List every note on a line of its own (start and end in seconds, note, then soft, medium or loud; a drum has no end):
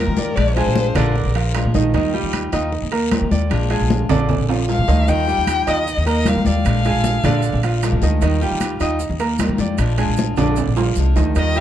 0.00 0.35 D#3 soft
0.00 0.36 G3 soft
0.00 0.10 A#3 medium
0.00 0.36 D#4 medium
0.00 0.36 F4 medium
0.00 0.10 A#4 medium
0.00 0.37 A#4 medium
0.00 0.11 A#5 medium
0.07 0.17 D#3 medium
0.17 0.36 D#2 medium
0.17 0.50 D5 medium
0.17 high conga medium
0.17 short guiro medium
0.36 0.65 A#1 medium
0.36 0.55 F3 medium
0.36 0.56 G#3 medium
0.36 0.56 D4 medium
0.36 0.55 F4 medium
0.36 0.55 D5 medium
0.36 high conga soft
0.36 high timbale medium
0.36 long guiro medium
0.56 0.89 G#3 medium
0.56 0.95 G#3 medium
0.56 0.95 D4 medium
0.56 0.94 F4 medium
0.56 0.89 G#4 medium
0.56 0.97 C5 medium
0.56 0.89 G#5 medium
0.56 high conga soft
0.56 high timbale medium
0.66 0.94 A#1 medium
0.76 high conga loud
0.76 short guiro medium
0.95 1.24 A#1 medium
0.95 1.28 D3 medium
0.95 1.14 G#3 medium
0.95 1.15 D4 medium
0.95 1.28 D4 loud
0.95 1.14 F4 medium
0.95 1.55 A#4 medium
0.95 1.29 D5 loud
0.95 high conga soft
0.95 low conga medium
0.95 high timbale loud
0.95 short guiro medium
1.15 muted steel-string acoustic guitar stroke medium
1.15 high conga soft
1.15 long guiro medium
1.25 1.62 A#1 medium
1.35 1.67 F3 medium
1.35 1.68 F4 medium
1.35 1.68 F5 medium
1.35 high conga soft
1.35 high timbale medium
1.54 1.93 F3 medium
1.54 1.93 G#3 medium
1.54 1.93 D4 medium
1.54 1.94 F4 medium
1.54 high conga soft
1.54 high timbale medium
1.54 low timbale medium
1.54 short guiro medium
1.65 1.74 A#2 medium
1.74 1.93 A#1 loud
1.74 1.90 D#3 medium
1.74 1.91 D#4 medium
1.74 1.91 D#5 medium
1.74 high conga medium
1.74 short guiro medium
1.94 2.22 D#2 loud
1.94 2.13 D#3 medium
1.94 2.10 D#3 medium
1.94 2.13 G3 medium
1.94 2.10 D#4 medium
1.94 2.13 D#4 medium
1.94 2.12 F4 medium
1.94 2.11 D#5 medium
1.94 high timbale medium
1.94 long guiro medium
2.13 2.46 G3 medium
2.13 2.53 G3 medium
2.13 2.52 D#4 medium
2.13 2.51 F4 medium
2.13 2.46 G4 medium
2.13 2.46 G5 medium
2.13 high conga soft
2.23 2.51 D#2 medium
2.33 high conga medium
2.33 high timbale medium
2.33 short guiro medium
2.52 2.81 D#2 medium
2.52 2.71 G3 medium
2.52 2.85 D#4 medium
2.52 2.71 D#4 medium
2.52 2.71 F4 medium
2.52 2.85 D#5 medium
2.52 2.85 D#6 medium
2.52 high timbale medium
2.52 short guiro medium
2.72 muted steel-string acoustic guitar stroke medium
2.72 high conga soft
2.72 long guiro medium
2.82 3.19 D#2 medium
2.92 3.24 A#3 medium
2.92 3.24 A#4 medium
2.92 3.24 A#5 medium
2.92 high conga soft
2.92 high timbale medium
3.11 3.49 D#3 soft
3.11 3.50 G3 medium
3.11 3.50 D#4 medium
3.11 3.50 F4 medium
3.11 high conga medium
3.11 high timbale medium
3.11 low timbale medium
3.11 short guiro medium
3.21 3.30 D#3 medium
3.31 3.50 D#2 medium
3.31 3.64 D5 medium
3.31 high conga medium
3.31 short guiro medium
3.50 3.79 A#1 medium
3.50 3.69 F3 medium
3.50 3.69 G#3 medium
3.50 3.70 D4 medium
3.50 3.69 F4 medium
3.50 high conga soft
3.50 high timbale medium
3.50 long guiro medium
3.70 4.03 G#3 medium
3.70 4.10 G#3 medium
3.70 4.09 D4 medium
3.70 4.08 F4 medium
3.70 4.03 G#4 medium
3.70 4.03 G#5 medium
3.70 high conga soft
3.70 high timbale medium
3.80 4.08 A#1 medium
3.90 high conga loud
3.90 short guiro medium
4.09 4.38 A#1 medium
4.09 4.42 D3 medium
4.09 4.28 G#3 medium
4.09 4.42 D4 medium
4.09 4.28 D4 medium
4.09 4.28 F4 medium
4.09 4.42 D5 loud
4.09 high conga soft
4.09 low conga medium
4.09 high timbale medium
4.09 short guiro medium
4.29 muted steel-string acoustic guitar stroke medium
4.29 high conga soft
4.29 low conga medium
4.29 high timbale medium
4.29 long guiro medium
4.39 4.76 A#1 medium
4.49 4.81 F3 medium
4.49 4.81 F4 medium
4.49 4.82 F5 medium
4.49 high conga soft
4.49 high timbale medium
4.68 5.07 F3 soft
4.68 5.07 G#3 soft
4.68 5.08 D4 soft
4.68 5.08 F4 medium
4.68 5.10 F5 medium
4.68 high conga soft
4.68 low timbale medium
4.68 short guiro medium
4.78 4.88 A#2 medium
4.88 5.07 D2 loud
4.88 5.04 D#3 medium
4.88 5.04 D#4 medium
4.88 5.05 D#5 medium
4.88 low timbale medium
4.88 short guiro medium
5.07 5.36 D#2 medium
5.07 5.27 D#3 medium
5.07 5.24 D#3 medium
5.07 5.27 G3 medium
5.07 5.24 D#4 medium
5.07 5.27 D#4 medium
5.07 5.26 F4 medium
5.07 5.24 D#5 medium
5.07 5.70 G5 loud
5.07 high conga soft
5.07 high timbale medium
5.07 long guiro medium
5.07 maracas medium
5.27 5.60 G3 medium
5.27 5.67 G3 medium
5.27 5.66 D#4 medium
5.27 5.66 F4 medium
5.27 5.60 G4 medium
5.27 5.60 G5 medium
5.27 high conga soft
5.27 maracas soft
5.38 5.66 D#2 medium
5.46 high conga medium
5.46 high timbale loud
5.46 short guiro medium
5.46 maracas medium
5.67 5.95 D#2 medium
5.67 5.86 G3 medium
5.67 5.99 D#4 medium
5.67 5.86 D#4 medium
5.67 5.86 F4 medium
5.67 5.99 D#5 medium
5.67 6.07 D#5 loud
5.67 6.00 D#6 medium
5.67 high timbale medium
5.67 short guiro medium
5.67 maracas soft
5.86 muted steel-string acoustic guitar stroke medium
5.86 high conga soft
5.86 long guiro medium
5.86 maracas medium
5.97 6.34 D#2 loud
6.06 6.38 A#3 medium
6.06 6.38 A#4 medium
6.06 6.30 D#5 medium
6.06 6.39 A#5 medium
6.06 high conga soft
6.06 high timbale medium
6.06 maracas soft
6.25 6.64 D#3 soft
6.25 6.65 G3 medium
6.25 6.65 D#4 soft
6.25 6.65 F4 medium
6.25 6.47 F5 medium
6.25 high conga medium
6.25 high timbale medium
6.25 low timbale medium
6.25 short guiro medium
6.25 maracas medium
6.36 6.45 D#3 medium
6.45 6.64 D#2 medium
6.45 6.78 D5 medium
6.45 8.00 F5 medium
6.45 high conga medium
6.45 short guiro medium
6.45 maracas soft
6.65 6.93 A#1 loud
6.65 6.84 F3 medium
6.65 6.85 G#3 medium
6.65 6.85 D4 medium
6.65 6.84 F4 medium
6.65 high conga soft
6.65 high timbale medium
6.65 long guiro medium
6.65 maracas medium
6.85 7.17 G#3 medium
6.85 7.24 G#3 medium
6.85 7.24 D4 medium
6.85 7.23 F4 medium
6.85 7.17 G#4 medium
6.85 7.18 G#5 medium
6.85 high conga soft
6.85 high timbale medium
6.85 maracas soft
6.94 7.22 A#1 medium
7.04 high conga medium
7.04 short guiro medium
7.04 maracas medium
7.23 7.52 A#1 medium
7.23 7.56 D3 medium
7.23 7.43 G#3 medium
7.23 7.56 D4 medium
7.23 7.43 D4 medium
7.23 7.43 F4 medium
7.23 7.57 D5 medium
7.23 high conga soft
7.23 low conga medium
7.23 high timbale medium
7.23 short guiro medium
7.23 maracas soft
7.42 muted steel-string acoustic guitar stroke medium
7.42 high conga soft
7.42 long guiro medium
7.42 maracas medium
7.53 7.91 A#1 loud
7.63 7.96 F3 medium
7.63 7.96 F4 medium
7.63 7.96 F5 medium
7.63 high conga soft
7.63 high timbale medium
7.63 maracas soft
7.82 8.21 F3 medium
7.82 8.22 G#3 medium
7.82 8.22 D4 medium
7.82 8.22 F4 soft
7.82 high conga soft
7.82 high timbale medium
7.82 low timbale medium
7.82 short guiro medium
7.82 maracas medium
7.92 8.01 A#2 medium
8.02 8.21 D2 medium
8.02 8.19 D#3 medium
8.02 8.19 D#4 medium
8.02 8.19 D#5 medium
8.02 high conga medium
8.02 short guiro medium
8.02 maracas soft
8.21 8.50 D#2 loud
8.21 8.38 D#3 medium
8.21 8.41 D#3 medium
8.21 8.41 G3 medium
8.21 8.38 D#4 medium
8.21 8.41 D#4 medium
8.21 8.40 F4 medium
8.21 8.39 D#5 medium
8.21 high conga soft
8.21 high timbale medium
8.21 long guiro medium
8.21 maracas medium
8.41 8.74 G3 medium
8.41 8.81 G3 medium
8.41 8.80 D#4 medium
8.41 8.79 F4 medium
8.41 8.74 G4 medium
8.41 8.74 G5 medium
8.41 high conga soft
8.41 maracas soft
8.51 8.79 D#2 medium
8.60 high conga medium
8.60 high timbale medium
8.60 short guiro medium
8.60 maracas medium
8.80 9.09 D#2 medium
8.80 8.99 G3 medium
8.80 9.13 D#4 medium
8.80 9.00 D#4 medium
8.80 8.99 F4 medium
8.80 9.13 D#5 medium
8.80 9.13 D#6 medium
8.80 high timbale medium
8.80 short guiro medium
8.80 maracas soft
8.99 muted steel-string acoustic guitar stroke medium
8.99 high conga soft
8.99 long guiro medium
8.99 maracas medium
9.10 9.47 D#2 loud
9.19 9.52 A#3 medium
9.19 9.52 A#4 medium
9.19 9.52 A#5 medium
9.19 high conga soft
9.19 high timbale medium
9.19 maracas soft
9.38 9.77 D#3 soft
9.38 9.78 G3 medium
9.38 9.78 D#4 medium
9.38 9.78 F4 medium
9.38 high conga medium
9.38 high timbale medium
9.38 low timbale medium
9.38 short guiro medium
9.38 maracas medium
9.49 9.58 D#3 medium
9.58 9.78 F2 loud
9.58 9.92 D5 medium
9.58 high conga medium
9.58 short guiro medium
9.58 maracas soft
9.78 10.07 A#1 medium
9.78 9.97 F3 medium
9.78 9.97 G#3 medium
9.78 9.97 D4 medium
9.78 9.96 F4 medium
9.78 high conga soft
9.78 high timbale medium
9.78 long guiro medium
9.78 maracas medium
9.98 10.30 G#3 medium
9.98 10.37 G#3 medium
9.98 10.37 D4 medium
9.98 10.36 F4 medium
9.98 10.31 G#4 medium
9.98 10.31 G#5 medium
9.98 high conga soft
9.98 high timbale medium
9.98 maracas soft
10.08 10.36 A#1 medium
10.16 high conga medium
10.16 short guiro medium
10.16 maracas medium
10.36 10.65 A#1 medium
10.36 10.70 D3 medium
10.36 10.57 G#3 medium
10.36 10.70 D4 medium
10.36 10.57 D4 medium
10.36 10.56 F4 medium
10.36 10.70 D5 medium
10.36 high conga soft
10.36 low conga medium
10.36 high timbale medium
10.36 short guiro medium
10.36 maracas soft
10.56 muted steel-string acoustic guitar stroke medium
10.56 high conga soft
10.56 high timbale medium
10.56 long guiro medium
10.56 maracas medium
10.67 10.95 A#1 medium
10.76 11.09 F3 medium
10.76 11.09 F4 medium
10.76 11.09 F5 medium
10.76 high conga soft
10.76 low timbale loud
10.76 maracas soft
10.96 11.14 C2 medium
10.96 11.35 F3 medium
10.96 11.35 G#3 soft
10.96 11.36 D4 medium
10.96 11.36 F4 medium
10.96 high conga soft
10.96 short guiro medium
10.96 maracas medium
11.16 11.34 D2 medium
11.16 11.32 D#3 medium
11.16 11.32 D#4 medium
11.16 11.33 D#5 medium
11.16 low timbale medium
11.16 short guiro medium
11.16 maracas soft
11.35 11.60 D#2 medium
11.35 11.55 D#3 medium
11.35 11.52 D#3 medium
11.35 11.55 G3 medium
11.35 11.52 D#4 medium
11.35 11.55 D#4 medium
11.35 11.54 F4 medium
11.35 11.52 D#5 medium
11.35 11.59 D#5 medium
11.35 high conga soft
11.35 high timbale medium
11.35 maracas medium
11.55 11.60 G3 medium
11.55 11.60 D#4 medium
11.55 11.60 F4 medium
11.55 11.60 G4 medium
11.55 11.60 G5 medium
11.55 high conga soft
11.55 maracas soft